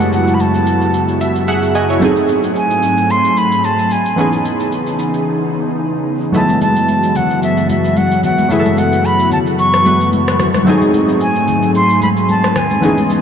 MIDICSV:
0, 0, Header, 1, 7, 480
1, 0, Start_track
1, 0, Tempo, 540541
1, 1793, Time_signature, 4, 2, 24, 8
1, 11735, End_track
2, 0, Start_track
2, 0, Title_t, "Flute"
2, 0, Program_c, 0, 73
2, 0, Note_on_c, 0, 78, 89
2, 117, Note_off_c, 0, 78, 0
2, 123, Note_on_c, 0, 78, 78
2, 305, Note_on_c, 0, 83, 57
2, 318, Note_off_c, 0, 78, 0
2, 363, Note_on_c, 0, 81, 83
2, 376, Note_off_c, 0, 83, 0
2, 1078, Note_off_c, 0, 81, 0
2, 2281, Note_on_c, 0, 80, 92
2, 2762, Note_on_c, 0, 84, 105
2, 2775, Note_off_c, 0, 80, 0
2, 3002, Note_on_c, 0, 83, 97
2, 3016, Note_off_c, 0, 84, 0
2, 3241, Note_on_c, 0, 81, 90
2, 3254, Note_off_c, 0, 83, 0
2, 3482, Note_on_c, 0, 80, 83
2, 3495, Note_off_c, 0, 81, 0
2, 3957, Note_off_c, 0, 80, 0
2, 5643, Note_on_c, 0, 81, 91
2, 5862, Note_off_c, 0, 81, 0
2, 5882, Note_on_c, 0, 81, 90
2, 6362, Note_on_c, 0, 78, 83
2, 6375, Note_off_c, 0, 81, 0
2, 6597, Note_off_c, 0, 78, 0
2, 6602, Note_on_c, 0, 76, 85
2, 6821, Note_off_c, 0, 76, 0
2, 6842, Note_on_c, 0, 76, 81
2, 7081, Note_on_c, 0, 78, 88
2, 7094, Note_off_c, 0, 76, 0
2, 7317, Note_off_c, 0, 78, 0
2, 7321, Note_on_c, 0, 78, 87
2, 7561, Note_on_c, 0, 76, 91
2, 7574, Note_off_c, 0, 78, 0
2, 7800, Note_on_c, 0, 78, 87
2, 7813, Note_off_c, 0, 76, 0
2, 8041, Note_on_c, 0, 83, 101
2, 8055, Note_off_c, 0, 78, 0
2, 8277, Note_off_c, 0, 83, 0
2, 8281, Note_on_c, 0, 81, 96
2, 8335, Note_off_c, 0, 81, 0
2, 8521, Note_on_c, 0, 85, 103
2, 8964, Note_off_c, 0, 85, 0
2, 9962, Note_on_c, 0, 80, 92
2, 10404, Note_off_c, 0, 80, 0
2, 10440, Note_on_c, 0, 84, 109
2, 10660, Note_off_c, 0, 84, 0
2, 10680, Note_on_c, 0, 83, 92
2, 10734, Note_off_c, 0, 83, 0
2, 10920, Note_on_c, 0, 81, 90
2, 11162, Note_on_c, 0, 80, 83
2, 11175, Note_off_c, 0, 81, 0
2, 11637, Note_off_c, 0, 80, 0
2, 11735, End_track
3, 0, Start_track
3, 0, Title_t, "Synth keys"
3, 0, Program_c, 1, 88
3, 0, Control_c, 1, 64, 127
3, 0, Note_on_c, 1, 54, 63
3, 0, Note_on_c, 1, 56, 70
3, 0, Note_on_c, 1, 57, 55
3, 0, Note_on_c, 1, 59, 60
3, 0, Note_on_c, 1, 64, 57
3, 0, Note_on_c, 1, 67, 55
3, 1075, Note_on_c, 1, 76, 65
3, 1290, Note_off_c, 1, 64, 0
3, 1297, Note_off_c, 1, 76, 0
3, 1315, Note_on_c, 1, 76, 66
3, 1315, Note_on_c, 1, 78, 76
3, 1321, Note_on_c, 1, 68, 57
3, 1325, Note_off_c, 1, 56, 0
3, 1537, Note_off_c, 1, 78, 0
3, 1542, Note_off_c, 1, 76, 0
3, 1545, Note_off_c, 1, 68, 0
3, 1555, Note_on_c, 1, 75, 67
3, 1555, Note_on_c, 1, 80, 68
3, 1561, Note_on_c, 1, 66, 58
3, 1679, Note_off_c, 1, 75, 0
3, 1682, Note_off_c, 1, 66, 0
3, 1687, Note_on_c, 1, 73, 64
3, 1692, Note_on_c, 1, 64, 53
3, 1748, Note_off_c, 1, 54, 0
3, 1753, Note_off_c, 1, 57, 0
3, 1758, Note_off_c, 1, 59, 0
3, 1774, Note_on_c, 1, 54, 74
3, 1777, Note_off_c, 1, 80, 0
3, 1784, Note_on_c, 1, 57, 71
3, 1794, Note_on_c, 1, 60, 68
3, 1805, Note_on_c, 1, 63, 69
3, 1806, Control_c, 1, 64, 0
3, 1812, Note_off_c, 1, 67, 0
3, 1815, Note_on_c, 1, 68, 83
3, 1914, Note_off_c, 1, 73, 0
3, 1917, Note_off_c, 1, 64, 0
3, 1971, Control_c, 1, 64, 127
3, 3668, Note_off_c, 1, 54, 0
3, 3673, Note_off_c, 1, 57, 0
3, 3678, Note_off_c, 1, 60, 0
3, 3683, Note_off_c, 1, 63, 0
3, 3689, Note_off_c, 1, 68, 0
3, 3694, Note_on_c, 1, 52, 61
3, 3704, Note_on_c, 1, 59, 58
3, 3714, Note_on_c, 1, 61, 58
3, 3722, Control_c, 1, 64, 0
3, 3725, Note_on_c, 1, 63, 60
3, 3735, Note_on_c, 1, 68, 68
3, 3862, Control_c, 1, 64, 127
3, 5588, Note_off_c, 1, 52, 0
3, 5593, Note_off_c, 1, 59, 0
3, 5598, Note_off_c, 1, 61, 0
3, 5604, Note_off_c, 1, 63, 0
3, 5609, Note_off_c, 1, 68, 0
3, 5615, Note_on_c, 1, 54, 63
3, 5625, Note_on_c, 1, 57, 56
3, 5635, Note_on_c, 1, 59, 57
3, 5644, Control_c, 1, 64, 0
3, 5645, Note_on_c, 1, 64, 58
3, 5656, Note_on_c, 1, 56, 69
3, 5819, Control_c, 1, 64, 127
3, 7508, Note_off_c, 1, 54, 0
3, 7513, Note_off_c, 1, 57, 0
3, 7519, Note_off_c, 1, 59, 0
3, 7524, Note_off_c, 1, 64, 0
3, 7529, Note_off_c, 1, 56, 0
3, 7535, Note_on_c, 1, 54, 63
3, 7545, Note_on_c, 1, 57, 57
3, 7555, Note_on_c, 1, 59, 57
3, 7566, Note_on_c, 1, 64, 60
3, 7576, Note_on_c, 1, 68, 58
3, 7628, Note_off_c, 1, 68, 0
3, 7634, Note_on_c, 1, 69, 69
3, 8720, Note_off_c, 1, 54, 0
3, 8725, Note_off_c, 1, 57, 0
3, 8730, Note_off_c, 1, 59, 0
3, 8736, Note_off_c, 1, 64, 0
3, 8745, Note_on_c, 1, 54, 48
3, 8750, Note_on_c, 1, 57, 46
3, 8755, Note_on_c, 1, 59, 45
3, 8761, Note_on_c, 1, 64, 45
3, 8766, Note_on_c, 1, 71, 53
3, 8770, Note_off_c, 1, 69, 0
3, 9444, Note_off_c, 1, 54, 0
3, 9454, Note_off_c, 1, 57, 0
3, 9454, Note_on_c, 1, 54, 79
3, 9465, Note_on_c, 1, 57, 69
3, 9474, Note_off_c, 1, 59, 0
3, 9475, Note_on_c, 1, 60, 74
3, 9477, Note_off_c, 1, 64, 0
3, 9479, Note_off_c, 1, 71, 0
3, 9486, Control_c, 1, 64, 0
3, 9486, Note_on_c, 1, 63, 70
3, 9496, Note_on_c, 1, 68, 88
3, 9621, Control_c, 1, 64, 127
3, 11348, Note_off_c, 1, 54, 0
3, 11353, Note_off_c, 1, 57, 0
3, 11358, Note_off_c, 1, 60, 0
3, 11364, Note_off_c, 1, 63, 0
3, 11369, Note_off_c, 1, 68, 0
3, 11374, Note_on_c, 1, 52, 64
3, 11384, Note_on_c, 1, 59, 60
3, 11394, Note_on_c, 1, 61, 60
3, 11405, Control_c, 1, 64, 0
3, 11405, Note_on_c, 1, 63, 57
3, 11415, Note_on_c, 1, 68, 71
3, 11536, Control_c, 1, 64, 127
3, 11735, Note_off_c, 1, 52, 0
3, 11735, Note_off_c, 1, 59, 0
3, 11735, Note_off_c, 1, 61, 0
3, 11735, Note_off_c, 1, 63, 0
3, 11735, Note_off_c, 1, 68, 0
3, 11735, End_track
4, 0, Start_track
4, 0, Title_t, "Analog synth pad"
4, 0, Program_c, 2, 89
4, 0, Note_on_c, 2, 42, 73
4, 0, Note_on_c, 2, 49, 66
4, 0, Note_on_c, 2, 54, 69
4, 0, Note_on_c, 2, 59, 68
4, 0, Note_on_c, 2, 64, 72
4, 0, Note_on_c, 2, 66, 84
4, 1757, Note_off_c, 2, 42, 0
4, 1757, Note_off_c, 2, 49, 0
4, 1757, Note_off_c, 2, 54, 0
4, 1757, Note_off_c, 2, 59, 0
4, 1757, Note_off_c, 2, 64, 0
4, 1757, Note_off_c, 2, 66, 0
4, 1792, Note_on_c, 2, 54, 70
4, 1793, Note_on_c, 2, 44, 74
4, 1793, Note_on_c, 2, 57, 80
4, 1793, Note_on_c, 2, 60, 68
4, 3694, Note_off_c, 2, 44, 0
4, 3694, Note_off_c, 2, 54, 0
4, 3694, Note_off_c, 2, 57, 0
4, 3694, Note_off_c, 2, 60, 0
4, 3713, Note_on_c, 2, 49, 74
4, 3713, Note_on_c, 2, 52, 83
4, 3713, Note_on_c, 2, 59, 68
4, 3713, Note_on_c, 2, 63, 69
4, 5614, Note_off_c, 2, 63, 0
4, 5633, Note_on_c, 2, 54, 69
4, 5634, Note_on_c, 2, 42, 76
4, 5634, Note_on_c, 2, 66, 84
4, 9437, Note_off_c, 2, 54, 0
4, 9437, Note_off_c, 2, 59, 0
4, 9438, Note_off_c, 2, 42, 0
4, 9438, Note_off_c, 2, 49, 0
4, 9438, Note_off_c, 2, 52, 0
4, 9438, Note_off_c, 2, 66, 0
4, 9472, Note_on_c, 2, 54, 68
4, 9473, Note_on_c, 2, 44, 75
4, 9473, Note_on_c, 2, 57, 80
4, 9473, Note_on_c, 2, 60, 67
4, 11373, Note_off_c, 2, 54, 0
4, 11374, Note_off_c, 2, 44, 0
4, 11374, Note_off_c, 2, 57, 0
4, 11374, Note_off_c, 2, 60, 0
4, 11392, Note_on_c, 2, 49, 73
4, 11392, Note_on_c, 2, 52, 68
4, 11392, Note_on_c, 2, 59, 70
4, 11392, Note_on_c, 2, 75, 82
4, 11735, Note_off_c, 2, 49, 0
4, 11735, Note_off_c, 2, 52, 0
4, 11735, Note_off_c, 2, 59, 0
4, 11735, Note_off_c, 2, 75, 0
4, 11735, End_track
5, 0, Start_track
5, 0, Title_t, "Downlifter"
5, 0, Program_c, 3, 103
5, 0, Note_on_c, 3, 60, 83
5, 1793, Note_off_c, 3, 60, 0
5, 11735, End_track
6, 0, Start_track
6, 0, Title_t, "Riser"
6, 0, Program_c, 4, 103
6, 11393, Note_on_c, 4, 60, 80
6, 11735, Note_off_c, 4, 60, 0
6, 11735, End_track
7, 0, Start_track
7, 0, Title_t, "Drums"
7, 4, Note_on_c, 9, 82, 53
7, 93, Note_off_c, 9, 82, 0
7, 114, Note_on_c, 9, 82, 81
7, 202, Note_off_c, 9, 82, 0
7, 245, Note_on_c, 9, 82, 55
7, 333, Note_off_c, 9, 82, 0
7, 352, Note_on_c, 9, 82, 60
7, 441, Note_off_c, 9, 82, 0
7, 484, Note_on_c, 9, 82, 51
7, 572, Note_off_c, 9, 82, 0
7, 592, Note_on_c, 9, 82, 84
7, 681, Note_off_c, 9, 82, 0
7, 723, Note_on_c, 9, 82, 44
7, 812, Note_off_c, 9, 82, 0
7, 833, Note_on_c, 9, 82, 75
7, 922, Note_off_c, 9, 82, 0
7, 964, Note_on_c, 9, 82, 49
7, 1053, Note_off_c, 9, 82, 0
7, 1073, Note_on_c, 9, 82, 78
7, 1161, Note_off_c, 9, 82, 0
7, 1205, Note_on_c, 9, 82, 59
7, 1294, Note_off_c, 9, 82, 0
7, 1312, Note_on_c, 9, 82, 63
7, 1400, Note_off_c, 9, 82, 0
7, 1445, Note_on_c, 9, 82, 54
7, 1533, Note_off_c, 9, 82, 0
7, 1552, Note_on_c, 9, 82, 84
7, 1641, Note_off_c, 9, 82, 0
7, 1682, Note_on_c, 9, 82, 57
7, 1771, Note_off_c, 9, 82, 0
7, 1791, Note_on_c, 9, 82, 79
7, 1880, Note_off_c, 9, 82, 0
7, 1922, Note_on_c, 9, 82, 56
7, 2011, Note_off_c, 9, 82, 0
7, 2032, Note_on_c, 9, 82, 75
7, 2121, Note_off_c, 9, 82, 0
7, 2164, Note_on_c, 9, 82, 54
7, 2253, Note_off_c, 9, 82, 0
7, 2272, Note_on_c, 9, 82, 59
7, 2361, Note_off_c, 9, 82, 0
7, 2403, Note_on_c, 9, 82, 49
7, 2491, Note_off_c, 9, 82, 0
7, 2511, Note_on_c, 9, 82, 78
7, 2600, Note_off_c, 9, 82, 0
7, 2642, Note_on_c, 9, 82, 44
7, 2731, Note_off_c, 9, 82, 0
7, 2753, Note_on_c, 9, 82, 73
7, 2842, Note_off_c, 9, 82, 0
7, 2884, Note_on_c, 9, 82, 52
7, 2973, Note_off_c, 9, 82, 0
7, 2992, Note_on_c, 9, 82, 77
7, 3081, Note_off_c, 9, 82, 0
7, 3125, Note_on_c, 9, 82, 57
7, 3214, Note_off_c, 9, 82, 0
7, 3231, Note_on_c, 9, 82, 61
7, 3320, Note_off_c, 9, 82, 0
7, 3365, Note_on_c, 9, 82, 55
7, 3453, Note_off_c, 9, 82, 0
7, 3472, Note_on_c, 9, 82, 82
7, 3561, Note_off_c, 9, 82, 0
7, 3603, Note_on_c, 9, 82, 60
7, 3692, Note_off_c, 9, 82, 0
7, 3712, Note_on_c, 9, 82, 74
7, 3801, Note_off_c, 9, 82, 0
7, 3844, Note_on_c, 9, 82, 55
7, 3933, Note_off_c, 9, 82, 0
7, 3954, Note_on_c, 9, 82, 77
7, 4042, Note_off_c, 9, 82, 0
7, 4085, Note_on_c, 9, 82, 54
7, 4174, Note_off_c, 9, 82, 0
7, 4193, Note_on_c, 9, 82, 62
7, 4282, Note_off_c, 9, 82, 0
7, 4324, Note_on_c, 9, 82, 51
7, 4413, Note_off_c, 9, 82, 0
7, 4433, Note_on_c, 9, 82, 82
7, 4521, Note_off_c, 9, 82, 0
7, 4564, Note_on_c, 9, 82, 44
7, 4653, Note_off_c, 9, 82, 0
7, 5633, Note_on_c, 9, 82, 80
7, 5634, Note_on_c, 9, 64, 76
7, 5722, Note_off_c, 9, 82, 0
7, 5723, Note_off_c, 9, 64, 0
7, 5764, Note_on_c, 9, 82, 58
7, 5766, Note_on_c, 9, 63, 64
7, 5853, Note_off_c, 9, 82, 0
7, 5854, Note_off_c, 9, 63, 0
7, 5874, Note_on_c, 9, 63, 84
7, 5874, Note_on_c, 9, 82, 81
7, 5963, Note_off_c, 9, 63, 0
7, 5963, Note_off_c, 9, 82, 0
7, 6006, Note_on_c, 9, 82, 57
7, 6094, Note_off_c, 9, 82, 0
7, 6114, Note_on_c, 9, 82, 62
7, 6202, Note_off_c, 9, 82, 0
7, 6245, Note_on_c, 9, 82, 51
7, 6334, Note_off_c, 9, 82, 0
7, 6354, Note_on_c, 9, 82, 84
7, 6355, Note_on_c, 9, 64, 68
7, 6442, Note_off_c, 9, 82, 0
7, 6444, Note_off_c, 9, 64, 0
7, 6485, Note_on_c, 9, 82, 47
7, 6574, Note_off_c, 9, 82, 0
7, 6595, Note_on_c, 9, 82, 76
7, 6684, Note_off_c, 9, 82, 0
7, 6725, Note_on_c, 9, 82, 52
7, 6814, Note_off_c, 9, 82, 0
7, 6833, Note_on_c, 9, 63, 71
7, 6834, Note_on_c, 9, 82, 80
7, 6922, Note_off_c, 9, 63, 0
7, 6922, Note_off_c, 9, 82, 0
7, 6967, Note_on_c, 9, 82, 60
7, 7056, Note_off_c, 9, 82, 0
7, 7073, Note_on_c, 9, 82, 61
7, 7075, Note_on_c, 9, 63, 72
7, 7162, Note_off_c, 9, 82, 0
7, 7164, Note_off_c, 9, 63, 0
7, 7206, Note_on_c, 9, 82, 52
7, 7295, Note_off_c, 9, 82, 0
7, 7311, Note_on_c, 9, 64, 75
7, 7313, Note_on_c, 9, 82, 84
7, 7400, Note_off_c, 9, 64, 0
7, 7402, Note_off_c, 9, 82, 0
7, 7444, Note_on_c, 9, 82, 59
7, 7446, Note_on_c, 9, 63, 71
7, 7533, Note_off_c, 9, 82, 0
7, 7535, Note_off_c, 9, 63, 0
7, 7553, Note_on_c, 9, 82, 77
7, 7554, Note_on_c, 9, 64, 74
7, 7641, Note_off_c, 9, 82, 0
7, 7642, Note_off_c, 9, 64, 0
7, 7684, Note_on_c, 9, 63, 61
7, 7684, Note_on_c, 9, 82, 55
7, 7773, Note_off_c, 9, 63, 0
7, 7773, Note_off_c, 9, 82, 0
7, 7793, Note_on_c, 9, 63, 82
7, 7794, Note_on_c, 9, 82, 81
7, 7882, Note_off_c, 9, 63, 0
7, 7883, Note_off_c, 9, 82, 0
7, 7926, Note_on_c, 9, 82, 55
7, 8014, Note_off_c, 9, 82, 0
7, 8033, Note_on_c, 9, 82, 63
7, 8122, Note_off_c, 9, 82, 0
7, 8164, Note_on_c, 9, 82, 50
7, 8253, Note_off_c, 9, 82, 0
7, 8273, Note_on_c, 9, 82, 81
7, 8274, Note_on_c, 9, 64, 72
7, 8362, Note_off_c, 9, 82, 0
7, 8363, Note_off_c, 9, 64, 0
7, 8404, Note_on_c, 9, 82, 45
7, 8493, Note_off_c, 9, 82, 0
7, 8515, Note_on_c, 9, 82, 75
7, 8604, Note_off_c, 9, 82, 0
7, 8646, Note_on_c, 9, 82, 53
7, 8647, Note_on_c, 9, 37, 79
7, 8735, Note_off_c, 9, 82, 0
7, 8736, Note_off_c, 9, 37, 0
7, 8753, Note_on_c, 9, 63, 74
7, 8755, Note_on_c, 9, 82, 77
7, 8841, Note_off_c, 9, 63, 0
7, 8843, Note_off_c, 9, 82, 0
7, 8887, Note_on_c, 9, 82, 60
7, 8976, Note_off_c, 9, 82, 0
7, 8994, Note_on_c, 9, 82, 59
7, 8995, Note_on_c, 9, 63, 74
7, 9082, Note_off_c, 9, 82, 0
7, 9083, Note_off_c, 9, 63, 0
7, 9127, Note_on_c, 9, 82, 54
7, 9129, Note_on_c, 9, 37, 98
7, 9215, Note_off_c, 9, 82, 0
7, 9218, Note_off_c, 9, 37, 0
7, 9231, Note_on_c, 9, 37, 93
7, 9232, Note_on_c, 9, 64, 74
7, 9233, Note_on_c, 9, 82, 83
7, 9320, Note_off_c, 9, 37, 0
7, 9321, Note_off_c, 9, 64, 0
7, 9322, Note_off_c, 9, 82, 0
7, 9363, Note_on_c, 9, 37, 84
7, 9364, Note_on_c, 9, 82, 59
7, 9366, Note_on_c, 9, 63, 70
7, 9452, Note_off_c, 9, 37, 0
7, 9453, Note_off_c, 9, 82, 0
7, 9455, Note_off_c, 9, 63, 0
7, 9473, Note_on_c, 9, 82, 80
7, 9474, Note_on_c, 9, 64, 76
7, 9562, Note_off_c, 9, 82, 0
7, 9563, Note_off_c, 9, 64, 0
7, 9605, Note_on_c, 9, 82, 55
7, 9606, Note_on_c, 9, 63, 64
7, 9693, Note_off_c, 9, 82, 0
7, 9695, Note_off_c, 9, 63, 0
7, 9714, Note_on_c, 9, 63, 81
7, 9715, Note_on_c, 9, 82, 83
7, 9803, Note_off_c, 9, 63, 0
7, 9803, Note_off_c, 9, 82, 0
7, 9846, Note_on_c, 9, 82, 54
7, 9935, Note_off_c, 9, 82, 0
7, 9953, Note_on_c, 9, 82, 63
7, 10042, Note_off_c, 9, 82, 0
7, 10084, Note_on_c, 9, 82, 51
7, 10173, Note_off_c, 9, 82, 0
7, 10193, Note_on_c, 9, 82, 80
7, 10195, Note_on_c, 9, 64, 73
7, 10282, Note_off_c, 9, 82, 0
7, 10284, Note_off_c, 9, 64, 0
7, 10324, Note_on_c, 9, 82, 45
7, 10413, Note_off_c, 9, 82, 0
7, 10434, Note_on_c, 9, 82, 74
7, 10523, Note_off_c, 9, 82, 0
7, 10565, Note_on_c, 9, 82, 51
7, 10654, Note_off_c, 9, 82, 0
7, 10673, Note_on_c, 9, 63, 70
7, 10673, Note_on_c, 9, 82, 78
7, 10761, Note_off_c, 9, 63, 0
7, 10761, Note_off_c, 9, 82, 0
7, 10806, Note_on_c, 9, 82, 60
7, 10895, Note_off_c, 9, 82, 0
7, 10913, Note_on_c, 9, 82, 64
7, 10915, Note_on_c, 9, 63, 68
7, 11001, Note_off_c, 9, 82, 0
7, 11003, Note_off_c, 9, 63, 0
7, 11046, Note_on_c, 9, 82, 54
7, 11048, Note_on_c, 9, 37, 90
7, 11135, Note_off_c, 9, 82, 0
7, 11137, Note_off_c, 9, 37, 0
7, 11151, Note_on_c, 9, 37, 97
7, 11151, Note_on_c, 9, 64, 70
7, 11153, Note_on_c, 9, 82, 85
7, 11240, Note_off_c, 9, 37, 0
7, 11240, Note_off_c, 9, 64, 0
7, 11242, Note_off_c, 9, 82, 0
7, 11284, Note_on_c, 9, 82, 58
7, 11286, Note_on_c, 9, 63, 72
7, 11373, Note_off_c, 9, 82, 0
7, 11375, Note_off_c, 9, 63, 0
7, 11393, Note_on_c, 9, 82, 81
7, 11394, Note_on_c, 9, 64, 76
7, 11482, Note_off_c, 9, 82, 0
7, 11483, Note_off_c, 9, 64, 0
7, 11524, Note_on_c, 9, 82, 58
7, 11526, Note_on_c, 9, 63, 62
7, 11613, Note_off_c, 9, 82, 0
7, 11615, Note_off_c, 9, 63, 0
7, 11634, Note_on_c, 9, 63, 84
7, 11634, Note_on_c, 9, 82, 81
7, 11723, Note_off_c, 9, 63, 0
7, 11723, Note_off_c, 9, 82, 0
7, 11735, End_track
0, 0, End_of_file